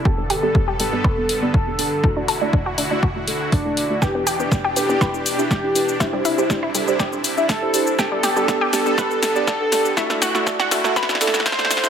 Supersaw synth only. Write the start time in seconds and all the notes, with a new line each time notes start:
0.05 G2 D3 B3 A4
2.04 D2 E4 F#4
4.02 E2 B2 D4 G4
6.00 C2 C3 E4
7.99 G2 D3 B3 A4
9.97 D2 E4 F#4